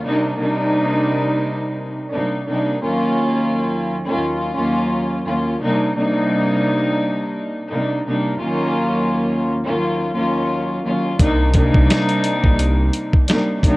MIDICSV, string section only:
0, 0, Header, 1, 2, 480
1, 0, Start_track
1, 0, Key_signature, -3, "minor"
1, 0, Tempo, 697674
1, 23, Time_signature, 4, 2, 24, 8
1, 9472, End_track
2, 0, Start_track
2, 0, Title_t, "String section"
2, 0, Program_c, 0, 48
2, 19, Note_on_c, 0, 48, 89
2, 20, Note_on_c, 0, 55, 80
2, 22, Note_on_c, 0, 58, 90
2, 23, Note_on_c, 0, 62, 86
2, 24, Note_on_c, 0, 63, 107
2, 244, Note_off_c, 0, 48, 0
2, 245, Note_off_c, 0, 55, 0
2, 245, Note_off_c, 0, 58, 0
2, 246, Note_off_c, 0, 62, 0
2, 247, Note_off_c, 0, 63, 0
2, 260, Note_on_c, 0, 48, 98
2, 262, Note_on_c, 0, 55, 102
2, 263, Note_on_c, 0, 58, 88
2, 264, Note_on_c, 0, 62, 89
2, 266, Note_on_c, 0, 63, 117
2, 1377, Note_off_c, 0, 48, 0
2, 1377, Note_off_c, 0, 55, 0
2, 1378, Note_off_c, 0, 58, 0
2, 1379, Note_off_c, 0, 62, 0
2, 1379, Note_off_c, 0, 63, 0
2, 1462, Note_on_c, 0, 48, 71
2, 1463, Note_on_c, 0, 55, 70
2, 1464, Note_on_c, 0, 58, 71
2, 1466, Note_on_c, 0, 62, 64
2, 1467, Note_on_c, 0, 63, 83
2, 1686, Note_off_c, 0, 48, 0
2, 1686, Note_off_c, 0, 55, 0
2, 1687, Note_off_c, 0, 58, 0
2, 1687, Note_off_c, 0, 62, 0
2, 1688, Note_off_c, 0, 63, 0
2, 1702, Note_on_c, 0, 48, 71
2, 1703, Note_on_c, 0, 55, 68
2, 1705, Note_on_c, 0, 58, 70
2, 1706, Note_on_c, 0, 62, 74
2, 1707, Note_on_c, 0, 63, 85
2, 1926, Note_off_c, 0, 48, 0
2, 1926, Note_off_c, 0, 55, 0
2, 1927, Note_off_c, 0, 58, 0
2, 1928, Note_off_c, 0, 62, 0
2, 1928, Note_off_c, 0, 63, 0
2, 1939, Note_on_c, 0, 39, 98
2, 1940, Note_on_c, 0, 54, 82
2, 1941, Note_on_c, 0, 58, 101
2, 1943, Note_on_c, 0, 61, 96
2, 1944, Note_on_c, 0, 65, 101
2, 2720, Note_off_c, 0, 39, 0
2, 2720, Note_off_c, 0, 54, 0
2, 2721, Note_off_c, 0, 58, 0
2, 2722, Note_off_c, 0, 61, 0
2, 2722, Note_off_c, 0, 65, 0
2, 2800, Note_on_c, 0, 39, 86
2, 2801, Note_on_c, 0, 54, 84
2, 2803, Note_on_c, 0, 58, 80
2, 2803, Note_on_c, 0, 61, 78
2, 2805, Note_on_c, 0, 65, 102
2, 3119, Note_off_c, 0, 39, 0
2, 3120, Note_off_c, 0, 54, 0
2, 3121, Note_off_c, 0, 58, 0
2, 3121, Note_off_c, 0, 61, 0
2, 3122, Note_off_c, 0, 65, 0
2, 3142, Note_on_c, 0, 39, 95
2, 3143, Note_on_c, 0, 54, 80
2, 3145, Note_on_c, 0, 58, 92
2, 3146, Note_on_c, 0, 61, 83
2, 3147, Note_on_c, 0, 65, 103
2, 3588, Note_off_c, 0, 39, 0
2, 3589, Note_off_c, 0, 54, 0
2, 3590, Note_off_c, 0, 58, 0
2, 3591, Note_off_c, 0, 61, 0
2, 3591, Note_off_c, 0, 65, 0
2, 3619, Note_on_c, 0, 39, 81
2, 3620, Note_on_c, 0, 54, 69
2, 3621, Note_on_c, 0, 58, 66
2, 3623, Note_on_c, 0, 61, 66
2, 3624, Note_on_c, 0, 65, 85
2, 3844, Note_off_c, 0, 39, 0
2, 3845, Note_off_c, 0, 54, 0
2, 3845, Note_off_c, 0, 58, 0
2, 3846, Note_off_c, 0, 61, 0
2, 3847, Note_off_c, 0, 65, 0
2, 3859, Note_on_c, 0, 48, 92
2, 3860, Note_on_c, 0, 55, 84
2, 3862, Note_on_c, 0, 58, 90
2, 3863, Note_on_c, 0, 62, 85
2, 3864, Note_on_c, 0, 63, 111
2, 4084, Note_off_c, 0, 48, 0
2, 4085, Note_off_c, 0, 55, 0
2, 4085, Note_off_c, 0, 58, 0
2, 4086, Note_off_c, 0, 62, 0
2, 4087, Note_off_c, 0, 63, 0
2, 4101, Note_on_c, 0, 48, 101
2, 4103, Note_on_c, 0, 55, 101
2, 4104, Note_on_c, 0, 58, 92
2, 4105, Note_on_c, 0, 62, 90
2, 4107, Note_on_c, 0, 63, 118
2, 5217, Note_off_c, 0, 48, 0
2, 5218, Note_off_c, 0, 55, 0
2, 5218, Note_off_c, 0, 58, 0
2, 5219, Note_off_c, 0, 62, 0
2, 5220, Note_off_c, 0, 63, 0
2, 5301, Note_on_c, 0, 48, 73
2, 5302, Note_on_c, 0, 55, 76
2, 5304, Note_on_c, 0, 58, 70
2, 5305, Note_on_c, 0, 62, 67
2, 5306, Note_on_c, 0, 63, 81
2, 5525, Note_off_c, 0, 48, 0
2, 5526, Note_off_c, 0, 55, 0
2, 5526, Note_off_c, 0, 58, 0
2, 5527, Note_off_c, 0, 62, 0
2, 5528, Note_off_c, 0, 63, 0
2, 5542, Note_on_c, 0, 48, 73
2, 5543, Note_on_c, 0, 55, 68
2, 5545, Note_on_c, 0, 58, 72
2, 5546, Note_on_c, 0, 62, 72
2, 5547, Note_on_c, 0, 63, 85
2, 5766, Note_off_c, 0, 48, 0
2, 5766, Note_off_c, 0, 55, 0
2, 5767, Note_off_c, 0, 58, 0
2, 5767, Note_off_c, 0, 62, 0
2, 5768, Note_off_c, 0, 63, 0
2, 5777, Note_on_c, 0, 39, 98
2, 5778, Note_on_c, 0, 54, 83
2, 5779, Note_on_c, 0, 58, 103
2, 5781, Note_on_c, 0, 61, 96
2, 5783, Note_on_c, 0, 65, 103
2, 6559, Note_off_c, 0, 39, 0
2, 6560, Note_off_c, 0, 54, 0
2, 6560, Note_off_c, 0, 58, 0
2, 6561, Note_off_c, 0, 61, 0
2, 6562, Note_off_c, 0, 65, 0
2, 6640, Note_on_c, 0, 39, 83
2, 6642, Note_on_c, 0, 54, 84
2, 6643, Note_on_c, 0, 58, 77
2, 6644, Note_on_c, 0, 61, 74
2, 6645, Note_on_c, 0, 65, 99
2, 6959, Note_off_c, 0, 39, 0
2, 6960, Note_off_c, 0, 54, 0
2, 6961, Note_off_c, 0, 58, 0
2, 6961, Note_off_c, 0, 61, 0
2, 6962, Note_off_c, 0, 65, 0
2, 6983, Note_on_c, 0, 39, 97
2, 6984, Note_on_c, 0, 54, 79
2, 6986, Note_on_c, 0, 58, 85
2, 6987, Note_on_c, 0, 61, 85
2, 6988, Note_on_c, 0, 65, 100
2, 7429, Note_off_c, 0, 39, 0
2, 7430, Note_off_c, 0, 54, 0
2, 7430, Note_off_c, 0, 58, 0
2, 7431, Note_off_c, 0, 61, 0
2, 7432, Note_off_c, 0, 65, 0
2, 7460, Note_on_c, 0, 39, 77
2, 7460, Note_on_c, 0, 54, 69
2, 7462, Note_on_c, 0, 58, 67
2, 7463, Note_on_c, 0, 61, 65
2, 7465, Note_on_c, 0, 65, 86
2, 7685, Note_off_c, 0, 39, 0
2, 7685, Note_off_c, 0, 54, 0
2, 7686, Note_off_c, 0, 58, 0
2, 7686, Note_off_c, 0, 61, 0
2, 7687, Note_off_c, 0, 65, 0
2, 7699, Note_on_c, 0, 48, 98
2, 7700, Note_on_c, 0, 55, 86
2, 7702, Note_on_c, 0, 58, 94
2, 7703, Note_on_c, 0, 62, 90
2, 7704, Note_on_c, 0, 63, 112
2, 7924, Note_off_c, 0, 48, 0
2, 7925, Note_off_c, 0, 55, 0
2, 7925, Note_off_c, 0, 58, 0
2, 7926, Note_off_c, 0, 62, 0
2, 7927, Note_off_c, 0, 63, 0
2, 7941, Note_on_c, 0, 48, 105
2, 7942, Note_on_c, 0, 55, 107
2, 7944, Note_on_c, 0, 58, 96
2, 7945, Note_on_c, 0, 62, 95
2, 7947, Note_on_c, 0, 63, 122
2, 9057, Note_off_c, 0, 48, 0
2, 9058, Note_off_c, 0, 55, 0
2, 9058, Note_off_c, 0, 58, 0
2, 9059, Note_off_c, 0, 62, 0
2, 9060, Note_off_c, 0, 63, 0
2, 9141, Note_on_c, 0, 48, 79
2, 9143, Note_on_c, 0, 55, 80
2, 9144, Note_on_c, 0, 58, 73
2, 9146, Note_on_c, 0, 62, 68
2, 9147, Note_on_c, 0, 63, 85
2, 9365, Note_off_c, 0, 48, 0
2, 9366, Note_off_c, 0, 55, 0
2, 9366, Note_off_c, 0, 58, 0
2, 9367, Note_off_c, 0, 62, 0
2, 9368, Note_off_c, 0, 63, 0
2, 9384, Note_on_c, 0, 48, 75
2, 9385, Note_on_c, 0, 55, 72
2, 9386, Note_on_c, 0, 58, 77
2, 9387, Note_on_c, 0, 62, 76
2, 9389, Note_on_c, 0, 63, 94
2, 9472, Note_off_c, 0, 48, 0
2, 9472, Note_off_c, 0, 55, 0
2, 9472, Note_off_c, 0, 58, 0
2, 9472, Note_off_c, 0, 62, 0
2, 9472, Note_off_c, 0, 63, 0
2, 9472, End_track
0, 0, End_of_file